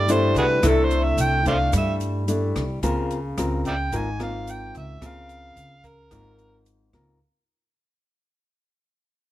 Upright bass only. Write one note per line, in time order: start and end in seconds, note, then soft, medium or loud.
0.00 0.31 G2 medium
0.35 0.60 C2 medium
0.63 1.14 C2 medium
1.18 1.69 C2 medium
1.73 2.51 G2 loud
2.55 2.81 C2 medium
2.83 3.34 C#2 medium
3.37 3.88 C#2 medium
3.92 4.70 G#1 loud
4.75 5.00 C#2 medium
5.02 5.53 C#2 medium
5.56 6.07 C#2 medium
6.11 6.89 G#1 medium
6.94 7.19 C#2 medium